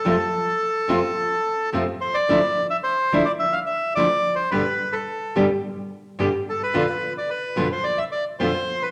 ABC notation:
X:1
M:4/4
L:1/16
Q:1/4=108
K:Flyd
V:1 name="Bandoneon"
A12 z2 c d- | d3 e c3 d e f e2 d3 c | B3 A4 z6 z A B- | B3 d B3 c d e d2 c3 B |]
V:2 name="Nylon-string guitar" clef=bass
[F,,C,F,A,CF]2 z4 [F,,C,F,A,CF]2 z4 [F,,C,F,A,CF]2 z2 | [D,F,A,DE]2 z4 [D,F,A,DE]2 z4 [D,F,A,DE]2 z2 | [G,,B,,D,G,B,G]2 z4 [G,,B,,D,G,B,G]2 z4 [G,,B,,D,G,B,G]2 z2 | [F,,B,,D,B,F]2 z4 [F,,B,,D,B,F]2 z4 [F,,B,,D,B,F]2 z2 |]